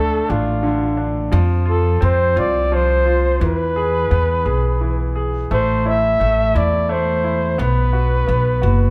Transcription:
Already playing: upright bass D2, grand piano D3 A3 D4, flugelhorn A4
0.28 upright bass A1, grand piano D4, flugelhorn F4
0.63 grand piano D3
0.97 grand piano D4
1.32 upright bass F2, grand piano F3
1.66 grand piano F4, flugelhorn A4
2.01 upright bass F2, grand piano C4, flugelhorn C5
2.36 upright bass C2, grand piano F4, flugelhorn D5
2.72 grand piano F3, flugelhorn C5
3.06 grand piano F4
3.40 upright bass E2, grand piano E3, flugelhorn B4
3.76 grand piano G#4
4.11 upright bass E2, grand piano B3
4.45 upright bass B1, grand piano G#4
4.81 grand piano E3
5.16 grand piano G#4
5.51 upright bass A1, grand piano A3, flugelhorn C5
5.85 grand piano E4, flugelhorn E5
6.20 upright bass A1, grand piano A3
6.55 upright bass E2, grand piano E4, flugelhorn D5
6.89 grand piano A3, flugelhorn C5
7.24 grand piano E4
7.58 upright bass B1, grand piano B3, flugelhorn B4
7.93 grand piano F#4
8.28 upright bass B1, grand piano B3
8.62 upright bass F#1, grand piano F#4

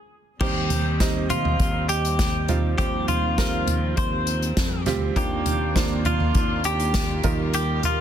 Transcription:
0.40 fingered electric bass D#2, string section D#3 G3 C4, upright piano D#3 G3 C4 D#4 C5, clean electric guitar G4, kick, crash
0.70 closed hi-hat, floor tom
1.00 upright piano G3 C4 D#4 D#5, kick, snare, closed hi-hat
1.30 clean electric guitar F4, closed hi-hat, floor tom
1.45 floor tom
1.60 fingered electric bass D#2, kick, closed hi-hat
1.89 clean electric guitar G4, closed hi-hat
2.05 closed hi-hat
2.19 kick, snare, closed hi-hat
2.48 upright piano G3 C4 D#4 F4, closed hi-hat, floor tom
2.78 fingered electric bass D#2, upright piano D#3 G3 C4 F4 C5, string section F3 C4, clean electric guitar G4, kick, closed hi-hat
3.08 clean electric guitar F4, closed hi-hat, floor tom
3.38 upright piano G3 C4 F4 A#4, kick, snare, closed hi-hat
3.67 closed hi-hat, floor tom
3.97 fingered electric bass D#2, clean electric guitar C5, kick, closed hi-hat
4.27 closed hi-hat
4.42 closed hi-hat
4.57 fingered electric bass F2, kick, snare, closed hi-hat
4.86 fingered electric bass D2, upright piano G3 C4 F4 G4, snare, closed hi-hat, floor tom
5.16 fingered electric bass D#2, upright piano D#3 A#3 D4 F4 C5, string section D#3 A#3 D4 F4, clean electric guitar G4, kick, closed hi-hat
5.46 closed hi-hat, floor tom
5.75 upright piano A#3 D4 F4 C5, kick, snare, closed hi-hat
6.05 clean electric guitar F4, closed hi-hat, floor tom
6.20 floor tom
6.35 fingered electric bass D#2, kick, closed hi-hat
6.64 clean electric guitar G4, closed hi-hat
6.80 closed hi-hat
6.94 kick, snare, closed hi-hat
7.23 fingered electric bass D#2, upright piano D#3 G3 D#4 F4 A#4, string section D#4 G4 A#4, kick, closed hi-hat, floor tom
7.54 clean electric guitar G4, closed hi-hat
7.83 clean electric guitar F4, closed hi-hat, floor tom

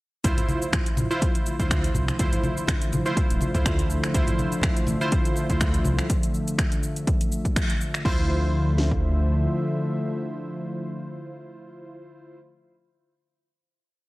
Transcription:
0.24 detuned saw bass D2, analog synth pad D3 F3 A3 E5, synth keys E4 F4 C5, kick, closed hi-hat, shaker
0.38 closed hi-hat, muted conga, low conga, shaker
0.49 high conga, shaker
0.62 muted conga, shaker
0.73 finger snap, kick, closed hi-hat, low conga, shaker
0.86 closed hi-hat, shaker
0.97 detuned saw bass A1, muted conga, high conga, shaker
1.11 synth keys E4 F4 C5, shaker
1.22 kick, closed hi-hat, muted conga, shaker
1.35 closed hi-hat, shaker
1.46 muted conga, shaker
1.60 detuned saw bass D2, synth keys E4 F4 C5, kick, closed hi-hat, shaker
1.71 finger snap, kick, closed hi-hat, muted conga, shaker
1.84 closed hi-hat, shaker
1.95 detuned saw bass C2, high conga, low conga, shaker
2.08 finger snap, muted conga, shaker
2.19 detuned saw bass D2, synth keys E4 F4 C5, kick, closed hi-hat, shaker
2.33 closed hi-hat, muted conga, low conga, shaker
2.43 high conga, shaker
2.57 muted conga, high conga, shaker
2.67 finger snap, kick, closed hi-hat, low conga, shaker
2.82 closed hi-hat, shaker
2.93 detuned saw bass A1, muted conga, high conga, shaker
3.06 synth keys E4 F4 C5, shaker
3.17 kick, closed hi-hat, muted conga, high conga, shaker
3.30 detuned saw bass D1, closed hi-hat, shaker
3.41 muted conga, high conga, shaker
3.54 detuned saw bass D2, synth keys E4 F4 C5, kick, closed hi-hat, low conga, shaker
3.66 finger snap, kick, closed hi-hat, shaker
3.79 closed hi-hat, shaker
3.90 detuned saw bass D2, shaker
4.03 finger snap, muted conga, high conga, shaker
4.14 detuned saw bass D2, synth keys E4 F4 C5, kick, closed hi-hat, shaker
4.27 closed hi-hat, muted conga, low conga, shaker
4.39 high conga, shaker
4.52 muted conga, shaker
4.61 finger snap, kick, closed hi-hat, low conga, shaker
4.77 closed hi-hat, shaker
4.87 detuned saw bass A1, muted conga, high conga, shaker
5.01 synth keys E4 F4 C5, shaker
5.12 kick, closed hi-hat, muted conga, shaker
5.25 closed hi-hat, shaker
5.36 muted conga, shaker
5.50 detuned saw bass D2, synth keys E4 F4 C5, kick, closed hi-hat, shaker
5.60 finger snap, kick, closed hi-hat, muted conga, shaker
5.74 closed hi-hat, shaker
5.84 detuned saw bass C2, high conga, low conga, shaker
5.98 finger snap, muted conga, shaker
6.10 kick, closed hi-hat, shaker
6.23 closed hi-hat, shaker
6.34 shaker
6.48 closed hi-hat, shaker
6.58 finger snap, kick, closed hi-hat, shaker
6.72 closed hi-hat, shaker
6.83 shaker
6.96 closed hi-hat, shaker
7.07 kick, closed hi-hat, shaker
7.21 closed hi-hat, shaker
7.32 shaker
7.45 kick, closed hi-hat, shaker
7.56 finger snap, kick, closed hi-hat, shaker
7.70 closed hi-hat, shaker
7.81 shaker
7.94 finger snap, shaker
8.05 detuned saw bass D2, analog synth pad D3 F3 A3 E5, synth keys E4 F4 C5, kick, crash
8.78 snare
8.91 kick

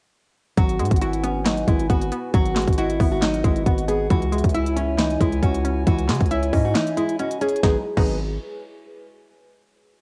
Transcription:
0.57 808-style bass G#1, synth pluck F#3, nylon-string guitar F#4, ambient pad F#4 B4 G#5, kick, closed hi-hat
0.69 closed hi-hat
0.79 808-style bass G#2, synth pluck G#3, soft synth lead F#5, closed hi-hat
0.85 closed hi-hat
0.91 808-style bass G#1, kick, closed hi-hat
0.96 closed hi-hat
1.01 nylon-string guitar E4, synth pluck F#4, closed hi-hat
1.13 closed hi-hat
1.24 synth pluck B3, nylon-string guitar C#4, closed hi-hat
1.46 synth pluck F#3, nylon-string guitar D#4, snare, clap, closed hi-hat
1.57 closed hi-hat
1.68 808-style bass G#1, synth pluck G#3, nylon-string guitar E4, kick, closed hi-hat
1.80 closed hi-hat
1.90 808-style bass G#1, synth pluck B3, nylon-string guitar F#4, kick, closed hi-hat
2.02 closed hi-hat
2.12 synth pluck B3, closed hi-hat
2.34 808-style bass G#1, synth pluck F#3, nylon-string guitar F#4, ambient pad F#5, kick, closed hi-hat
2.46 closed hi-hat
2.56 synth pluck G#3, snare, clap, closed hi-hat
2.62 closed hi-hat
2.68 808-style bass G#1, kick, closed hi-hat
2.73 closed hi-hat
2.78 nylon-string guitar E4, synth pluck F#4, soft synth lead D#5, closed hi-hat
2.90 closed hi-hat
3.00 808-style bass G#1, synth pluck B3, soft synth lead E5, kick, open hi-hat
3.12 nylon-string guitar F#4
3.22 synth pluck F#3, nylon-string guitar D#4, soft synth lead D#5, snare, clap, closed hi-hat
3.34 closed hi-hat
3.44 808-style bass G#1, synth pluck G#3, nylon-string guitar E4, kick, closed hi-hat
3.56 closed hi-hat
3.66 808-style bass G#1, synth pluck B3, nylon-string guitar F#4, kick, closed hi-hat
3.78 closed hi-hat
3.88 synth pluck B3, nylon-string guitar G#4, closed hi-hat
4.10 808-style bass C#2, synth pluck E3, ambient pad E4 C#5 G#5, nylon-string guitar F#4, kick, closed hi-hat
4.22 closed hi-hat
4.32 synth pluck G#3, soft synth lead E5, closed hi-hat
4.38 closed hi-hat
4.44 808-style bass C#2, kick, closed hi-hat
4.49 closed hi-hat
4.54 nylon-string guitar E4, synth pluck E5, closed hi-hat
4.66 closed hi-hat
4.76 synth pluck C#4, nylon-string guitar C#4, closed hi-hat
4.98 synth pluck E3, nylon-string guitar D#4, snare, clap, closed hi-hat
5.10 closed hi-hat
5.21 808-style bass C#2, synth pluck G#3, nylon-string guitar E4, kick, closed hi-hat
5.32 closed hi-hat
5.43 808-style bass C#2, synth pluck C#4, nylon-string guitar F#4, kick, closed hi-hat
5.54 closed hi-hat
5.65 synth pluck C#4, closed hi-hat
5.87 808-style bass C#2, synth pluck E3, nylon-string guitar F#4, kick, closed hi-hat
5.99 closed hi-hat
6.09 808-style bass C#3, synth pluck G#3, snare, clap, closed hi-hat
6.15 closed hi-hat
6.21 808-style bass C#2, kick, closed hi-hat
6.26 closed hi-hat
6.31 nylon-string guitar E4, soft synth lead C#5, synth pluck E5, closed hi-hat
6.43 closed hi-hat
6.53 808-style bass G#2, synth pluck C#4, soft synth lead D#5, kick, open hi-hat
6.65 nylon-string guitar F#4
6.75 synth pluck E3, nylon-string guitar D#4, snare, clap, closed hi-hat
6.87 closed hi-hat
6.97 synth pluck G#3, nylon-string guitar E4, closed hi-hat
7.09 closed hi-hat
7.19 synth pluck C#4, nylon-string guitar F#4, soft synth lead D#5, closed hi-hat
7.31 closed hi-hat
7.41 synth pluck C#4, nylon-string guitar G#4, soft synth lead C#5, closed hi-hat
7.49 closed hi-hat
7.56 closed hi-hat
7.63 808-style bass G#1, synth pluck F#3 G#3 B3 D#4, ambient pad G#3 F#4 B4, nylon-string guitar G#4, soft synth lead B4, kick, snare
7.97 808-style bass G#1, synth pluck F#3 G#3 B3 D#4, nylon-string guitar G#4, soft synth lead B4, kick, crash

